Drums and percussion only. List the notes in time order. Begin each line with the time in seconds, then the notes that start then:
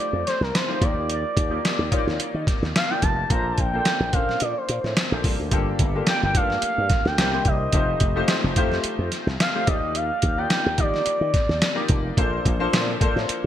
0.27 snare, closed hi-hat
0.43 snare
0.55 snare, closed hi-hat
0.81 kick, closed hi-hat
1.10 closed hi-hat
1.37 kick, closed hi-hat
1.65 snare, closed hi-hat
1.92 kick, closed hi-hat
2.08 snare
2.20 closed hi-hat
2.47 kick, snare, closed hi-hat
2.63 snare
2.76 snare, closed hi-hat
3.02 kick, closed hi-hat
3.30 kick, closed hi-hat
3.58 kick, closed hi-hat
3.85 snare, closed hi-hat
4.13 kick, closed hi-hat
4.29 snare
4.40 closed hi-hat
4.69 closed hi-hat
4.84 snare
4.97 snare, closed hi-hat
5.24 kick, open hi-hat
5.51 kick, closed hi-hat
5.79 kick, closed hi-hat
6.07 snare, closed hi-hat
6.35 kick, closed hi-hat
6.50 snare
6.62 closed hi-hat
6.90 kick, snare, closed hi-hat
7.05 snare
7.18 snare, closed hi-hat
7.45 kick, closed hi-hat
7.73 kick, closed hi-hat
8.00 kick, closed hi-hat
8.28 snare, closed hi-hat
8.56 kick, closed hi-hat
8.72 snare
8.84 closed hi-hat
9.12 snare, closed hi-hat
9.28 snare
9.40 snare, closed hi-hat
9.67 kick, closed hi-hat
9.95 closed hi-hat
10.22 kick, closed hi-hat
10.50 snare, closed hi-hat
10.78 kick, closed hi-hat
10.94 snare
11.06 closed hi-hat
11.34 kick, snare, closed hi-hat
11.49 snare
11.62 snare, closed hi-hat
11.88 kick, closed hi-hat
12.17 kick, closed hi-hat
12.45 kick, closed hi-hat
12.73 snare, closed hi-hat
13.01 kick, closed hi-hat
13.17 snare
13.29 closed hi-hat